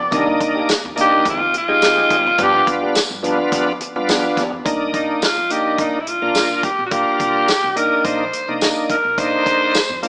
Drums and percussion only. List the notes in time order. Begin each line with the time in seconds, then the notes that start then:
0.12 kick, closed hi-hat
0.41 kick, closed hi-hat
0.69 snare, closed hi-hat, tambourine
0.97 closed hi-hat
1.25 kick, closed hi-hat
1.54 closed hi-hat
1.82 snare, closed hi-hat, tambourine
2.10 kick, closed hi-hat
2.38 kick, closed hi-hat
2.67 kick, closed hi-hat
2.95 snare, closed hi-hat, tambourine
3.24 closed hi-hat
3.52 kick, closed hi-hat
3.81 closed hi-hat
4.09 snare, closed hi-hat, tambourine
4.37 kick, snare, closed hi-hat
4.66 kick, closed hi-hat
4.94 kick, closed hi-hat
5.22 snare, closed hi-hat, tambourine
5.50 closed hi-hat
5.78 kick, closed hi-hat
6.07 closed hi-hat
6.35 snare, closed hi-hat, tambourine
6.63 kick, closed hi-hat
6.91 kick, closed hi-hat
7.20 kick, closed hi-hat
7.48 snare, closed hi-hat, tambourine
7.77 closed hi-hat
8.04 kick, closed hi-hat
8.33 closed hi-hat
8.61 snare, closed hi-hat, tambourine
8.90 kick, closed hi-hat
9.18 kick, closed hi-hat
9.46 kick, closed hi-hat
9.75 snare, closed hi-hat, tambourine
10.03 closed hi-hat